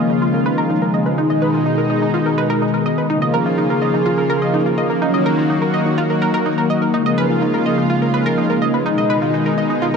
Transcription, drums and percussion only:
0.10 shaker soft
0.22 shaker medium
0.34 shaker soft
0.46 shaker soft
0.58 shaker soft
0.70 shaker soft
0.76 shaker medium
0.82 shaker soft
0.94 shaker medium
1.06 shaker soft
1.18 shaker medium
1.30 shaker soft
1.54 shaker soft
1.66 shaker medium
1.78 shaker soft
1.90 shaker soft
2.02 shaker soft
2.14 shaker medium
2.26 shaker soft
2.50 shaker soft
2.62 shaker soft
2.68 shaker soft
2.74 shaker soft
2.86 shaker medium
2.98 shaker soft
3.10 shaker medium
3.22 shaker soft
3.46 shaker soft
3.58 shaker medium
3.70 shaker soft
3.82 shaker soft
3.94 shaker soft
4.06 shaker medium
4.18 shaker soft
4.30 shaker soft
4.42 shaker soft
4.54 shaker soft
4.60 shaker soft
4.66 shaker soft
4.78 shaker medium
4.90 shaker soft
5.02 shaker medium
5.14 shaker soft
5.38 shaker soft
5.50 shaker medium
5.62 shaker soft
5.74 shaker soft
5.86 shaker soft
5.98 shaker medium
6.10 shaker soft
6.34 shaker soft
6.46 shaker soft
6.52 shaker soft
6.58 shaker soft
6.70 shaker medium
6.82 shaker soft
6.94 shaker medium
7.06 shaker soft
7.30 shaker soft
7.42 shaker medium
7.54 shaker soft
7.66 shaker soft
7.78 shaker soft
7.90 shaker medium
8.02 shaker soft
8.14 shaker soft
8.26 shaker soft
8.38 shaker soft
8.44 shaker medium
8.50 shaker soft
8.62 shaker medium
8.74 shaker soft
8.86 shaker medium
8.98 shaker soft
9.22 shaker soft
9.34 shaker medium
9.46 shaker soft
9.58 shaker soft
9.70 shaker soft
9.82 shaker medium

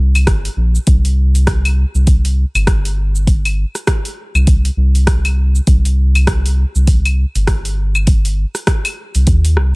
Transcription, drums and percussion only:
0.15 open hi-hat soft
0.15 claves medium
0.15 shaker medium
0.27 kick medium
0.27 cross-stick medium
0.27 open hi-hat medium
0.27 shaker soft
0.45 open hi-hat soft
0.45 shaker soft
0.75 shaker medium
0.87 kick loud
0.87 open hi-hat medium
0.87 shaker medium
1.05 open hi-hat soft
1.05 shaker soft
1.35 open hi-hat soft
1.35 shaker medium
1.47 kick medium
1.47 cross-stick medium
1.47 open hi-hat medium
1.47 shaker medium
1.65 open hi-hat soft
1.65 claves medium
1.65 shaker soft
1.95 shaker medium
2.07 kick medium
2.07 open hi-hat medium
2.07 shaker medium
2.25 open hi-hat soft
2.25 shaker soft
2.55 open hi-hat soft
2.55 claves medium
2.55 shaker medium
2.67 kick loud
2.67 cross-stick medium
2.67 open hi-hat medium
2.67 shaker medium
2.85 open hi-hat soft
2.85 shaker soft
3.15 shaker medium
3.27 kick loud
3.27 open hi-hat medium
3.27 shaker medium
3.45 open hi-hat soft
3.45 claves medium
3.45 shaker soft
3.75 cross-stick soft
3.75 open hi-hat soft
3.75 shaker medium
3.87 kick medium
3.87 cross-stick loud
3.87 open hi-hat medium
3.87 shaker medium
4.05 open hi-hat soft
4.05 shaker soft
4.35 claves medium
4.35 shaker medium
4.47 kick loud
4.47 open hi-hat medium
4.47 shaker soft
4.65 open hi-hat soft
4.65 shaker soft
4.95 open hi-hat soft
4.95 shaker medium
5.07 kick medium
5.07 cross-stick medium
5.07 open hi-hat medium
5.07 shaker medium
5.25 open hi-hat soft
5.25 claves medium
5.25 shaker soft
5.55 shaker medium
5.67 kick medium
5.67 open hi-hat medium
5.67 shaker medium
5.85 open hi-hat soft
5.85 shaker soft
6.15 open hi-hat soft
6.15 claves medium
6.15 shaker medium
6.27 kick medium
6.27 cross-stick loud
6.27 open hi-hat medium
6.27 shaker medium
6.46 open hi-hat soft
6.46 shaker soft
6.75 shaker medium
6.87 kick medium
6.87 open hi-hat medium
6.87 shaker soft
7.05 open hi-hat soft
7.05 claves medium
7.05 shaker soft
7.35 open hi-hat soft
7.35 shaker medium
7.47 kick loud
7.47 cross-stick medium
7.47 open hi-hat medium
7.47 shaker soft
7.65 open hi-hat soft
7.65 shaker soft
7.95 claves medium
7.95 shaker medium
8.07 kick loud
8.07 open hi-hat medium
8.07 shaker medium
8.25 open hi-hat soft
8.25 shaker soft
8.55 cross-stick soft
8.55 open hi-hat soft
8.55 shaker medium
8.67 kick medium
8.67 cross-stick loud
8.67 open hi-hat medium
8.67 shaker medium
8.85 open hi-hat soft
8.85 claves medium
8.85 shaker soft
9.15 open hi-hat soft
9.15 shaker medium
9.27 kick loud
9.27 open hi-hat medium
9.27 shaker soft
9.45 open hi-hat soft
9.45 shaker soft
9.57 cross-stick medium

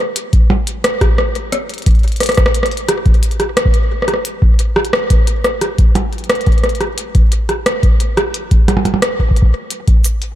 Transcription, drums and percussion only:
0.16 closed hi-hat loud
0.33 kick loud
0.33 closed hi-hat soft
0.50 percussion blips medium
0.67 closed hi-hat medium
0.84 cross-stick loud
0.84 closed hi-hat loud
1.01 kick loud
1.01 cross-stick medium
1.01 closed hi-hat soft
1.18 cross-stick medium
1.35 closed hi-hat soft
1.52 cross-stick soft
1.52 closed hi-hat medium
1.69 closed hi-hat soft
1.74 closed hi-hat soft
1.78 closed hi-hat soft
1.82 closed hi-hat soft
1.86 kick loud
1.86 closed hi-hat medium
1.91 closed hi-hat soft
1.95 closed hi-hat soft
1.99 closed hi-hat soft
2.03 closed hi-hat soft
2.08 closed hi-hat soft
2.12 closed hi-hat soft
2.16 closed hi-hat soft
2.20 cross-stick medium
2.20 closed hi-hat medium
2.23 closed hi-hat medium
2.26 cross-stick medium
2.26 closed hi-hat medium
2.35 cross-stick medium
2.35 closed hi-hat soft
2.37 kick loud
2.37 closed hi-hat soft
2.46 cross-stick loud
2.54 closed hi-hat medium
2.63 cross-stick medium
2.63 closed hi-hat medium
2.71 closed hi-hat soft
2.77 closed hi-hat soft
2.89 cross-stick medium
2.89 closed hi-hat medium
3.06 kick loud
3.06 closed hi-hat soft
3.14 closed hi-hat soft
3.23 closed hi-hat medium
3.31 closed hi-hat soft
3.40 cross-stick medium
3.40 closed hi-hat soft
3.57 cross-stick loud
3.57 closed hi-hat medium
3.65 kick loud
3.74 closed hi-hat soft
4.02 cross-stick soft
4.08 cross-stick soft
4.08 closed hi-hat soft
4.14 cross-stick soft
4.25 closed hi-hat medium
4.42 kick loud
4.59 closed hi-hat medium
4.76 cross-stick medium
4.85 closed hi-hat soft
4.93 cross-stick loud
5.10 kick loud
5.10 closed hi-hat medium
5.27 closed hi-hat medium
5.44 cross-stick medium
5.44 closed hi-hat soft
5.61 cross-stick medium
5.61 closed hi-hat medium
5.78 kick loud
5.78 closed hi-hat soft
5.95 closed hi-hat medium
5.95 percussion blips loud
6.13 closed hi-hat soft
6.18 closed hi-hat soft
6.24 closed hi-hat soft
6.30 cross-stick loud
6.30 closed hi-hat medium
6.35 closed hi-hat soft
6.41 closed hi-hat soft
6.46 kick loud
6.46 closed hi-hat soft
6.52 closed hi-hat soft
6.58 closed hi-hat soft
6.64 cross-stick medium
6.64 closed hi-hat soft
6.69 closed hi-hat soft
6.75 closed hi-hat soft
6.81 cross-stick medium
6.81 closed hi-hat soft
6.98 closed hi-hat medium
7.15 kick loud
7.15 closed hi-hat soft
7.32 closed hi-hat medium
7.49 cross-stick medium
7.49 closed hi-hat soft
7.66 cross-stick loud
7.66 closed hi-hat medium
7.83 kick loud
7.83 closed hi-hat soft
8.00 closed hi-hat medium
8.17 cross-stick medium
8.17 closed hi-hat soft
8.34 closed hi-hat medium
8.51 kick loud
8.51 closed hi-hat soft
8.68 cross-stick soft
8.68 closed hi-hat medium
8.68 percussion blips medium
8.77 percussion blips medium
8.85 closed hi-hat soft
8.85 percussion blips medium
8.94 percussion blips medium
9.02 cross-stick loud
9.02 closed hi-hat medium
9.19 kick medium
9.31 kick medium
9.36 closed hi-hat soft
9.42 kick medium
9.71 closed hi-hat medium
9.88 kick loud
9.88 closed hi-hat soft
10.04 closed hi-hat medium
10.04 cabasa medium
10.22 closed hi-hat soft

